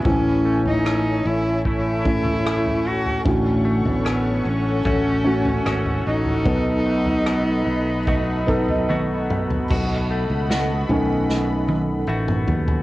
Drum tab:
CC |----------------|----------------|----------------|x---------------|
SD |----r-------r---|----r-------r---|----r-----------|----o---o-------|
T1 |----------------|----------------|------------o---|----------o-----|
T2 |----------------|----------------|--------------o-|-------------o--|
FT |o--o-------o-o-o|o--o----o--o-o-o|o--o----o--o---o|o-----o-------oo|
BD |o-------o-o-----|o-------o-------|o-------o-o-----|o---------------|